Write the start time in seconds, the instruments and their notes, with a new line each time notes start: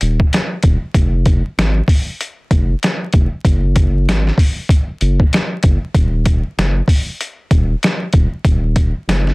0.01 sub bass D#1, closed hi-hat
0.20 kick
0.33 snare, closed hi-hat
0.63 sub bass D#1, kick, closed hi-hat
0.94 sub bass F1, kick, closed hi-hat
1.26 kick, closed hi-hat
1.58 sub bass G#1, snare, closed hi-hat
1.88 kick, open hi-hat
2.21 closed hi-hat
2.51 sub bass F1, kick, closed hi-hat
2.83 snare, closed hi-hat
3.13 sub bass F1, kick, closed hi-hat
3.45 sub bass F#1, kick, closed hi-hat
3.76 kick, closed hi-hat
4.08 sub bass G#1, snare, closed hi-hat
4.27 snare
4.38 kick, open hi-hat
4.69 kick, closed hi-hat
5.01 sub bass F#1, closed hi-hat
5.20 kick
5.33 snare, closed hi-hat
5.63 sub bass F#1, kick, closed hi-hat
5.94 sub bass D#1, kick, closed hi-hat
6.26 kick, closed hi-hat
6.58 sub bass F#1, snare, closed hi-hat
6.88 kick, open hi-hat
7.21 closed hi-hat
7.51 sub bass D#1, kick, closed hi-hat
7.83 snare, closed hi-hat
8.13 sub bass D#1, kick, closed hi-hat
8.45 sub bass D#1, kick, closed hi-hat
8.76 kick, closed hi-hat
9.07 sub bass F#1, snare, closed hi-hat
9.27 snare